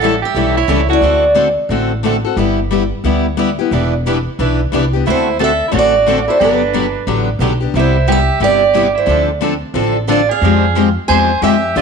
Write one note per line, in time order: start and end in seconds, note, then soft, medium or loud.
0.00 0.22 A1 medium
0.00 0.14 E3 medium
0.00 0.14 G3 medium
0.00 0.14 C#4 medium
0.00 0.21 A4 medium
0.00 0.24 F#5 loud
0.04 0.14 E4 medium
0.04 0.15 A4 medium
0.22 0.53 G4 medium
0.22 0.57 E5 medium
0.34 0.64 B1 medium
0.34 0.57 E3 medium
0.34 0.57 G3 medium
0.34 0.57 C#4 medium
0.34 0.57 E4 medium
0.34 0.57 A4 medium
0.57 0.88 E4 medium
0.57 0.91 C#5 medium
0.68 0.97 C#2 medium
0.68 0.80 E3 medium
0.68 0.80 G3 medium
0.68 0.80 C#4 medium
0.68 0.80 E4 medium
0.68 0.81 A4 medium
0.89 1.02 C#4 soft
0.89 1.02 E4 soft
0.89 1.33 F#4 medium
0.89 1.02 A4 soft
0.93 1.35 D5 medium
1.01 1.56 D2 medium
1.01 1.23 D3 medium
1.01 1.23 A3 medium
1.01 1.23 C4 medium
1.01 1.24 F#4 medium
1.01 1.24 A4 medium
1.35 1.46 D3 medium
1.35 1.47 A3 medium
1.35 1.47 C4 medium
1.35 1.47 F#4 medium
1.35 1.47 A4 medium
1.69 2.23 A1 medium
1.69 1.91 D3 medium
1.69 1.91 A3 medium
1.69 1.91 C4 medium
1.69 1.91 F#4 medium
1.69 1.92 A4 medium
2.03 2.14 D3 medium
2.03 2.15 A3 medium
2.03 2.15 C4 medium
2.03 2.15 F#4 medium
2.03 2.15 A4 medium
2.25 2.37 C4 soft
2.25 2.37 F#4 soft
2.25 2.37 A4 medium
2.37 2.91 G1 medium
2.37 2.58 G3 medium
2.37 2.58 B3 medium
2.37 2.58 E4 medium
2.37 2.58 G4 medium
2.71 2.82 G3 medium
2.71 2.82 B3 medium
2.71 2.83 E4 medium
2.71 2.83 G4 medium
3.04 3.58 D2 medium
3.04 3.25 G3 medium
3.04 3.25 B3 medium
3.04 3.25 E4 medium
3.04 3.26 G4 medium
3.37 3.48 G3 medium
3.37 3.49 B3 medium
3.37 3.49 E4 medium
3.37 3.49 G4 medium
3.59 3.72 B3 soft
3.59 3.71 E4 soft
3.59 3.71 G4 medium
3.71 4.25 E1 medium
3.71 3.92 E3 medium
3.71 3.93 G3 medium
3.71 3.93 B3 medium
3.71 3.93 D4 medium
3.71 3.93 E4 medium
3.71 3.93 G4 medium
3.71 3.93 B4 medium
4.06 4.17 E3 medium
4.06 4.17 G3 medium
4.06 4.17 B3 medium
4.06 4.17 D4 medium
4.06 4.17 E4 medium
4.06 4.17 G4 medium
4.06 4.17 B4 medium
4.39 4.67 B1 medium
4.39 4.59 E3 medium
4.39 4.60 G3 medium
4.39 4.60 B3 medium
4.39 4.60 D4 medium
4.39 4.60 E4 medium
4.39 4.60 G4 medium
4.39 4.60 B4 medium
4.72 5.01 C2 medium
4.72 4.83 E3 medium
4.72 4.84 G3 medium
4.72 4.84 B3 medium
4.72 4.84 D4 medium
4.72 4.84 E4 medium
4.72 4.84 G4 medium
4.72 4.84 B4 medium
4.93 5.07 B3 soft
4.93 5.06 D4 soft
4.93 5.06 G4 medium
5.06 5.60 D2 medium
5.06 5.26 D3 medium
5.06 5.27 A3 medium
5.06 5.27 C4 medium
5.06 5.38 E4 medium
5.06 5.27 F#4 medium
5.06 5.27 A4 medium
5.10 5.43 C5 medium
5.39 5.50 D3 medium
5.39 5.50 A3 medium
5.39 5.51 C4 medium
5.39 5.51 F#4 medium
5.39 5.66 A4 medium
5.39 5.51 A4 medium
5.44 5.71 E5 loud
5.68 5.93 D3 medium
5.68 5.93 A3 medium
5.68 5.73 E4 medium
5.72 6.26 A1 medium
5.72 5.93 C4 medium
5.72 5.93 F#4 medium
5.72 6.23 F#4 medium
5.72 5.94 A4 medium
5.72 5.75 C#5 medium
5.79 6.31 D5 loud
6.06 6.18 D3 medium
6.06 6.18 A3 medium
6.06 6.18 C4 medium
6.06 6.18 F#4 medium
6.06 6.18 A4 medium
6.28 6.40 C4 soft
6.28 6.39 E4 medium
6.28 6.41 F#4 soft
6.28 6.40 A4 soft
6.28 6.42 C5 medium
6.39 6.94 G1 medium
6.39 6.61 D3 medium
6.39 6.61 F#3 medium
6.39 6.61 B3 medium
6.39 7.03 D4 medium
6.39 6.61 D4 medium
6.39 6.62 G4 medium
6.44 7.05 B4 medium
6.74 6.85 D3 medium
6.74 6.85 F#3 medium
6.74 6.85 B3 medium
6.74 6.85 D4 medium
6.74 6.85 G4 medium
7.07 7.36 A1 medium
7.07 7.28 D3 medium
7.07 7.28 F#3 medium
7.07 7.28 B3 medium
7.07 7.28 D4 medium
7.07 7.28 G4 medium
7.39 7.68 B1 medium
7.39 7.52 D3 medium
7.39 7.52 F#3 medium
7.39 7.52 B3 medium
7.39 7.52 D4 medium
7.39 7.53 G4 medium
7.60 7.75 B3 soft
7.60 7.74 D4 soft
7.60 7.73 G4 medium
7.74 8.28 C2 medium
7.74 7.96 C3 medium
7.74 7.96 G3 medium
7.74 7.96 B3 medium
7.74 8.07 E4 medium
7.74 7.96 E4 medium
7.74 7.96 G4 medium
7.79 8.11 C5 medium
8.08 8.19 C3 medium
8.08 8.19 G3 medium
8.08 8.19 B3 medium
8.08 8.19 E4 medium
8.08 8.39 G4 medium
8.08 8.19 G4 medium
8.12 8.44 E5 loud
8.40 8.94 G1 medium
8.40 8.61 C3 medium
8.40 8.62 G3 medium
8.40 8.62 B3 medium
8.40 8.62 E4 medium
8.40 8.62 G4 medium
8.40 8.92 G4 medium
8.40 8.98 D5 loud
8.74 8.85 C3 medium
8.74 8.86 G3 medium
8.74 8.86 B3 medium
8.74 8.86 E4 medium
8.74 8.86 G4 medium
8.95 9.26 E4 medium
8.95 9.28 C5 medium
9.06 9.61 D2 medium
9.06 9.28 D3 medium
9.06 9.28 F3 medium
9.06 9.28 C4 medium
9.06 9.28 D4 medium
9.06 9.29 A4 medium
9.41 9.52 D3 medium
9.41 9.52 F3 medium
9.41 9.53 C4 medium
9.41 9.53 D4 medium
9.41 9.53 A4 medium
9.74 10.28 A1 medium
9.74 9.96 D3 medium
9.74 9.96 F3 medium
9.74 9.96 C4 medium
9.74 9.96 D4 medium
9.74 9.96 A4 medium
10.08 10.20 D3 medium
10.08 10.20 F3 medium
10.08 10.20 C4 medium
10.08 10.20 D4 medium
10.08 10.28 F4 medium
10.08 10.20 A4 medium
10.08 10.30 D5 medium
10.29 10.93 G#4 medium
10.29 10.94 F5 medium
10.41 10.96 F2 medium
10.41 10.64 F3 medium
10.41 10.65 G#3 medium
10.41 10.64 C4 medium
10.41 10.65 G4 medium
10.75 10.87 F3 medium
10.75 10.87 G#3 medium
10.75 10.87 C4 medium
10.75 10.88 G4 medium
11.08 11.38 E2 medium
11.08 11.30 F3 medium
11.08 11.31 G#3 medium
11.08 11.31 C4 medium
11.08 11.31 G4 medium
11.08 11.40 C5 medium
11.08 11.43 G#5 loud
11.42 11.71 F2 medium
11.42 11.54 F3 medium
11.42 11.54 G#3 medium
11.42 11.55 C4 medium
11.42 11.74 G4 medium
11.42 11.55 G4 medium
11.42 11.78 E5 medium
11.75 11.82 G2 medium
11.75 11.82 D3 medium
11.75 11.82 F3 medium
11.75 11.82 B3 medium
11.75 11.82 D4 medium
11.75 11.82 F4 medium
11.75 11.82 G4 medium
11.75 11.82 D5 medium